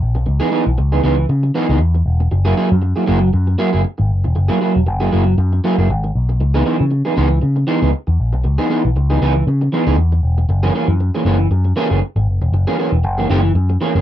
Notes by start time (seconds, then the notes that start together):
0.02 A#1
0.15 B1, muted clean electric guitar stroke
0.26 C#2, muted clean electric guitar stroke
0.40 E3 B3 D#4 G#4
0.51 E3 B3 D#4 G#4
0.66 B1, muted clean electric guitar stroke
0.78 C#2, muted clean electric guitar stroke
0.92 E3 B3 D#4 G#4
1.03 C#2 E3 B3 D#4 G#4
1.18 muted clean electric guitar stroke
1.29 C#3, muted clean electric guitar stroke
1.43 muted clean electric guitar stroke
1.54 E3 B3 D#4 G#4
1.69 C#2 E3 B3 D#4 G#4
1.80 E2, muted clean electric guitar stroke
1.94 muted clean electric guitar stroke
2.06 E1
2.20 muted clean electric guitar stroke
2.31 F#1, muted clean electric guitar stroke
2.45 F#3 A#3 E4 G#4
2.56 F#3 A#3 E4 G#4
2.71 F#2, muted clean electric guitar stroke
2.82 muted clean electric guitar stroke
2.96 F#3 A#3 E4 G#4
3.06 F#1 F#3 A#3 E4 G#4
3.21 muted clean electric guitar stroke
3.33 F#2, muted clean electric guitar stroke
3.47 muted clean electric guitar stroke
3.58 F#3 A#3 E4 G#4
3.72 F#1 F#3 A#3 E4 G#4
3.84 muted clean electric guitar stroke
3.98 G#1, muted clean electric guitar stroke
4.11 F#1
4.24 E1, muted clean electric guitar stroke
4.35 F#1, muted clean electric guitar stroke
4.48 F#3 A#3 E4 G#4
4.61 F#3 A#3 E4 G#4
4.75 E1, muted clean electric guitar stroke
4.86 F#1, muted clean electric guitar stroke
5.00 F#3 A#3 E4 G#4
5.11 F#1 F#3 A#3 E4 G#4
5.26 muted clean electric guitar stroke
5.38 F#2, muted clean electric guitar stroke
5.52 muted clean electric guitar stroke
5.64 F#3 A#3 E4 G#4
5.78 F#1 F#3 A#3 E4 G#4
5.90 G#1, muted clean electric guitar stroke
6.04 muted clean electric guitar stroke
6.15 B1
6.29 muted clean electric guitar stroke
6.40 C#2, muted clean electric guitar stroke
6.54 E3 B3 D#4 G#4
6.65 E3 B3 D#4 G#4
6.79 C#3, muted clean electric guitar stroke
6.91 muted clean electric guitar stroke
7.05 E3 B3 D#4 G#4
7.16 C#2 E3 B3 D#4 G#4
7.31 muted clean electric guitar stroke
7.42 C#3, muted clean electric guitar stroke
7.56 muted clean electric guitar stroke
7.67 E3 B3 D#4 G#4
7.81 C#2 E3 B3 D#4 G#4
8.07 E2, muted clean electric guitar stroke
8.20 A#1
8.33 B1, muted clean electric guitar stroke
8.44 C#2, muted clean electric guitar stroke
8.58 E3 B3 D#4 G#4
8.70 E3 B3 D#4 G#4
8.85 B1, muted clean electric guitar stroke
8.96 C#2, muted clean electric guitar stroke
9.10 E3 B3 D#4 G#4
9.22 C#2 E3 B3 D#4 G#4
9.36 muted clean electric guitar stroke
9.47 C#3, muted clean electric guitar stroke
9.61 muted clean electric guitar stroke
9.72 E3 B3 D#4 G#4
9.87 C#2 E3 B3 D#4 G#4
9.98 E2, muted clean electric guitar stroke
10.12 muted clean electric guitar stroke
10.23 E1
10.38 muted clean electric guitar stroke
10.49 F#1, muted clean electric guitar stroke
10.63 E3 A#3 C#4 G#4
10.75 E3 A#3 C#4 G#4
10.88 F#2, muted clean electric guitar stroke
11.00 muted clean electric guitar stroke
11.15 E3 A#3 C#4 G#4
11.25 F#1 E3 A#3 C#4 G#4
11.39 muted clean electric guitar stroke
11.51 F#2, muted clean electric guitar stroke
11.65 muted clean electric guitar stroke
11.76 E3 A#3 C#4 G#4
11.90 F#1 E3 A#3 C#4 G#4
12.02 muted clean electric guitar stroke
12.16 G#1, muted clean electric guitar stroke
12.28 F#1
12.42 E1, muted clean electric guitar stroke
12.52 F#1, muted clean electric guitar stroke
12.67 E3 A#3 C#4 G#4
12.78 E3 A#3 C#4 G#4
12.92 E1, muted clean electric guitar stroke
13.04 F#1, muted clean electric guitar stroke
13.18 E3 A#3 C#4 G#4
13.30 F#1 E3 A#3 C#4 G#4
13.44 muted clean electric guitar stroke
13.55 F#2, muted clean electric guitar stroke
13.70 muted clean electric guitar stroke
13.81 E3 A#3 C#4 G#4
13.95 F#1 E3 A#3 C#4 G#4